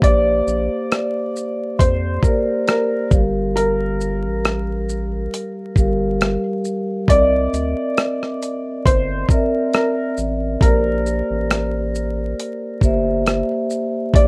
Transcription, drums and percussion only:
0.02 kick, closed hi-hat
0.48 shaker
0.92 cross-stick, closed hi-hat
1.36 shaker
1.79 kick, closed hi-hat
2.23 kick, shaker
2.68 cross-stick, closed hi-hat
3.11 kick, shaker
3.57 closed hi-hat
4.01 shaker
4.45 cross-stick, closed hi-hat
4.89 shaker
5.34 closed hi-hat
5.76 kick, shaker
6.21 cross-stick, closed hi-hat
6.65 shaker
7.08 kick, closed hi-hat
7.54 closed hi-hat, shaker
7.97 cross-stick, closed hi-hat
8.23 cross-stick
8.43 closed hi-hat, shaker
8.86 kick, closed hi-hat
9.29 kick, shaker
9.73 cross-stick, closed hi-hat
10.17 shaker
10.61 kick, closed hi-hat
11.06 shaker
11.50 cross-stick, closed hi-hat
11.95 shaker
12.40 closed hi-hat
12.81 kick, shaker
13.26 cross-stick, closed hi-hat
13.70 shaker
14.14 kick, closed hi-hat

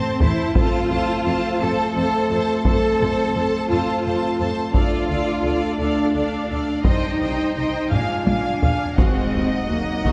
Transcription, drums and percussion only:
0.20 taiko low
0.55 taiko
2.65 taiko
4.74 taiko
6.84 taiko
7.92 taiko low-mid
8.27 taiko high
8.62 taiko low
8.98 taiko
10.05 taiko

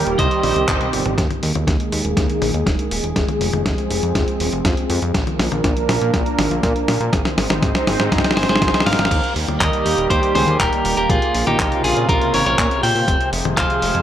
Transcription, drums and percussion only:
0.07 closed hi-hat
0.19 kick, closed hi-hat
0.31 closed hi-hat
0.43 open hi-hat, high tom
0.56 closed hi-hat
0.68 kick, clap, closed hi-hat, mid tom
0.81 closed hi-hat, mid tom
0.93 open hi-hat
1.06 closed hi-hat, mid tom
1.18 kick, snare, closed hi-hat
1.30 closed hi-hat, high tom
1.43 open hi-hat
1.55 closed hi-hat, high tom
1.67 kick, snare, closed hi-hat
1.80 closed hi-hat
1.92 open hi-hat
2.05 closed hi-hat
2.17 kick, snare, closed hi-hat
2.30 closed hi-hat
2.42 open hi-hat, high tom
2.54 closed hi-hat
2.66 kick, snare, closed hi-hat
2.79 closed hi-hat
2.91 open hi-hat
3.04 closed hi-hat
3.16 kick, snare, closed hi-hat
3.29 closed hi-hat, high tom
3.41 open hi-hat
3.53 closed hi-hat, high tom
3.66 kick, snare, closed hi-hat
3.78 closed hi-hat
3.91 open hi-hat
4.03 closed hi-hat
4.15 kick, snare, closed hi-hat
4.28 closed hi-hat
4.40 open hi-hat
4.52 closed hi-hat
4.65 kick, snare, closed hi-hat
4.77 closed hi-hat
4.90 open hi-hat
5.02 closed hi-hat
5.14 kick, snare, closed hi-hat
5.27 closed hi-hat, high tom
5.40 snare, open hi-hat
5.52 closed hi-hat, high tom
5.64 kick, snare, closed hi-hat
5.77 closed hi-hat
5.89 snare, open hi-hat
6.01 closed hi-hat
6.14 kick, snare, closed hi-hat
6.26 closed hi-hat
6.39 snare, open hi-hat, high tom
6.51 closed hi-hat
6.63 kick, snare, closed hi-hat
6.76 closed hi-hat
6.88 snare, open hi-hat
7.01 closed hi-hat
7.13 kick, snare, closed hi-hat
7.25 snare, closed hi-hat, high tom
7.38 snare, open hi-hat
7.50 snare, closed hi-hat, high tom
7.62 kick, snare, closed hi-hat
7.75 snare, closed hi-hat
7.87 snare, open hi-hat, high tom
8.00 snare, closed hi-hat
8.12 kick, snare, closed hi-hat
8.18 snare
8.24 snare, closed hi-hat
8.31 snare
8.37 snare, open hi-hat
8.43 snare
8.49 snare, closed hi-hat
8.56 snare
8.61 kick, snare, closed hi-hat
8.68 snare
8.74 snare, closed hi-hat
8.80 snare
8.87 snare, open hi-hat
8.93 snare
8.99 snare, closed hi-hat
9.05 snare
9.11 kick, closed hi-hat, crash
9.24 closed hi-hat
9.36 open hi-hat
9.48 closed hi-hat, high tom
9.61 kick, clap, closed hi-hat
9.73 closed hi-hat
9.86 open hi-hat
9.98 closed hi-hat
10.10 kick, closed hi-hat
10.23 closed hi-hat
10.35 open hi-hat, high tom
10.48 closed hi-hat
10.60 kick, clap, closed hi-hat
10.73 closed hi-hat
10.85 open hi-hat
10.97 closed hi-hat
11.10 kick, closed hi-hat
11.22 closed hi-hat
11.35 open hi-hat
11.47 closed hi-hat, high tom
11.59 kick, clap, closed hi-hat
11.72 closed hi-hat
11.84 open hi-hat
11.97 closed hi-hat
12.09 kick, closed hi-hat
12.21 closed hi-hat
12.34 open hi-hat
12.46 closed hi-hat
12.58 kick, clap, closed hi-hat
12.71 closed hi-hat
12.83 open hi-hat
12.96 open hi-hat
13.08 kick, closed hi-hat
13.21 closed hi-hat
13.33 open hi-hat
13.45 closed hi-hat, high tom
13.57 kick, clap, closed hi-hat
13.70 closed hi-hat
13.82 open hi-hat
13.95 closed hi-hat

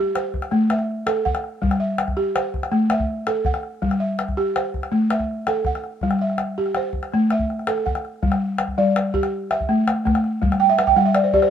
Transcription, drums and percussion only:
0.15 calabash click
0.34 calabash thump
0.42 calabash click
0.51 calabash click
0.70 calabash click
0.79 calabash click
1.07 calabash click
1.17 calabash click
1.26 calabash thump
1.35 calabash click
1.44 calabash click
1.63 calabash thump
1.71 calabash click
1.98 calabash click
2.08 calabash thump, calabash click
2.17 calabash click
2.36 calabash click
2.54 calabash thump
2.63 calabash click
2.73 calabash click
2.90 calabash click
3.00 calabash thump, calabash click
3.27 calabash click
3.35 calabash click
3.45 calabash thump
3.54 calabash click
3.63 calabash click
3.83 calabash thump
3.91 calabash click
4.19 calabash click
4.28 calabash thump, calabash click
4.38 calabash click
4.56 calabash click
4.74 calabash thump
4.83 calabash click
4.93 calabash click
5.10 calabash click
5.19 calabash thump, calabash click
5.47 calabash click
5.57 calabash click
5.65 calabash thump
5.75 calabash click
5.84 calabash click
6.01 calabash thump
6.11 calabash click
6.19 calabash click
6.30 calabash click
6.38 calabash click
6.66 calabash click
6.75 calabash click
6.93 calabash thump
7.03 calabash click
7.12 calabash click
7.30 calabash click
7.39 calabash thump
7.50 calabash click
7.59 calabash click
7.67 calabash click
7.78 calabash click
7.87 calabash thump, calabash click
7.95 calabash click
8.05 calabash click
8.23 calabash thump
8.32 calabash click
8.58 calabash click
8.68 calabash thump
8.96 calabash click
9.14 calabash thump
9.23 calabash click
9.51 calabash click
9.60 calabash thump
9.88 calabash click
10.07 calabash thump, calabash click
10.15 calabash click
10.24 calabash click
10.43 calabash thump
10.52 calabash click
10.79 calabash click
10.87 calabash thump
11.15 calabash click
11.33 calabash thump
11.42 calabash click

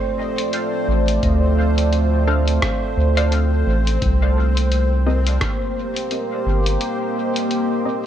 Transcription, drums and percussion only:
0.38 closed hi-hat
0.53 closed hi-hat
1.08 closed hi-hat
1.23 kick, closed hi-hat
1.78 closed hi-hat
1.93 closed hi-hat
2.48 closed hi-hat
2.62 kick, cross-stick, closed hi-hat
3.17 closed hi-hat
3.32 closed hi-hat
3.87 closed hi-hat
4.02 kick, closed hi-hat
4.57 closed hi-hat
4.72 closed hi-hat
5.27 closed hi-hat
5.41 kick, cross-stick, closed hi-hat
5.96 closed hi-hat
6.11 closed hi-hat
6.66 closed hi-hat
6.81 closed hi-hat
7.36 closed hi-hat
7.51 closed hi-hat

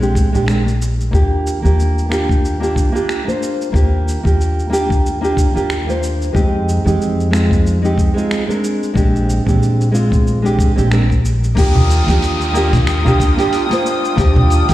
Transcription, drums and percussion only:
0.02 shaker
0.15 kick, high conga, shaker
0.35 shaker
0.48 finger snap, shaker
0.66 high conga, shaker
0.82 shaker
1.00 shaker
1.13 kick, high conga, shaker
1.47 shaker
1.64 high conga, low conga, shaker
1.80 shaker
1.98 shaker
2.12 finger snap, shaker
2.29 kick, high conga, shaker
2.45 shaker
2.63 shaker
2.76 kick, high conga, shaker
2.96 shaker
3.09 finger snap, shaker
3.28 high conga, shaker
3.43 shaker
3.61 shaker
3.74 kick, high conga, shaker
4.08 shaker
4.24 kick, high conga, low conga, shaker
4.41 shaker
4.59 shaker
4.73 shaker
4.89 kick, high conga, shaker
5.06 shaker
5.24 shaker
5.37 kick, high conga, shaker
5.57 shaker
5.70 finger snap, shaker
5.89 high conga, shaker
6.03 shaker
6.22 shaker
6.35 kick, high conga, shaker
6.69 shaker
6.86 high conga, low conga, shaker
7.01 shaker
7.20 shaker
7.33 finger snap, shaker
7.51 kick, high conga, shaker
7.67 shaker
7.85 shaker
7.98 kick, high conga, shaker
8.18 shaker
8.31 finger snap, shaker
8.49 high conga, shaker
8.64 shaker
8.83 shaker
8.96 kick, high conga, shaker
9.16 shaker
9.30 shaker
9.47 kick, high conga, low conga, shaker
9.63 shaker
9.81 shaker
9.95 shaker
10.12 kick, high conga, shaker
10.27 shaker
10.46 shaker
10.59 kick, high conga, shaker
10.78 shaker
10.92 finger snap, shaker
11.10 kick, high conga, shaker
11.25 shaker
11.44 shaker
11.56 kick, open hi-hat, high conga, shaker
11.75 low conga
11.90 open hi-hat, shaker
12.08 kick, open hi-hat, high conga, low conga, shaker
12.22 open hi-hat, shaker
12.41 shaker
12.55 shaker
12.73 kick, open hi-hat, high conga, low conga, shaker
12.87 finger snap, open hi-hat, shaker
13.06 low conga, shaker
13.20 kick, open hi-hat, high conga, shaker
13.39 open hi-hat, shaker
13.53 open hi-hat, shaker
13.71 open hi-hat, high conga, shaker
13.86 shaker
14.05 shaker
14.18 kick, open hi-hat, high conga, shaker
14.36 low conga
14.50 open hi-hat, shaker
14.69 open hi-hat, high conga, low conga, shaker

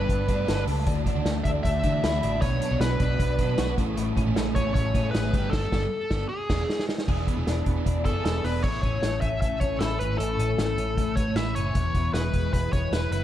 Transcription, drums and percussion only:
0.09 kick, closed hi-hat
0.29 kick, closed hi-hat
0.48 snare, closed hi-hat
0.68 open hi-hat
0.87 kick, closed hi-hat
1.06 kick, closed hi-hat
1.26 snare, closed hi-hat
1.45 kick, closed hi-hat
1.65 kick, closed hi-hat
1.84 kick, closed hi-hat
2.04 snare, closed hi-hat
2.23 closed hi-hat
2.42 kick, closed hi-hat
2.62 closed hi-hat
2.81 snare, closed hi-hat
3.00 kick, closed hi-hat
3.20 kick, closed hi-hat
3.39 kick, closed hi-hat
3.58 snare, closed hi-hat
3.78 kick, closed hi-hat
3.97 closed hi-hat
4.17 kick, closed hi-hat
4.36 snare, closed hi-hat
4.56 kick, closed hi-hat
4.75 kick, closed hi-hat
4.95 kick, closed hi-hat
5.15 snare, closed hi-hat
5.34 kick, closed hi-hat
5.53 kick, snare, crash
5.72 kick, snare
6.11 kick, snare
6.50 kick, snare, crash
6.70 snare
6.79 snare
6.89 snare
6.98 snare
7.08 kick, crash
7.27 kick, closed hi-hat
7.47 snare, closed hi-hat
7.66 kick, closed hi-hat
7.86 kick, closed hi-hat
8.05 kick, closed hi-hat
8.25 snare, closed hi-hat
8.45 open hi-hat
8.64 kick, crash
8.83 kick, closed hi-hat
9.03 snare, closed hi-hat
9.22 kick, closed hi-hat
9.42 kick, closed hi-hat
9.61 kick, closed hi-hat
9.81 snare, closed hi-hat
10.00 closed hi-hat
10.20 closed hi-hat
10.40 closed hi-hat
10.58 snare, closed hi-hat
10.78 closed hi-hat
10.97 kick, closed hi-hat
11.17 kick, closed hi-hat
11.36 snare, closed hi-hat
11.56 closed hi-hat
11.75 kick, closed hi-hat
11.95 kick, closed hi-hat
12.14 snare, closed hi-hat
12.34 kick, closed hi-hat
12.53 kick, closed hi-hat
12.73 kick, closed hi-hat
12.93 snare, closed hi-hat
13.12 closed hi-hat

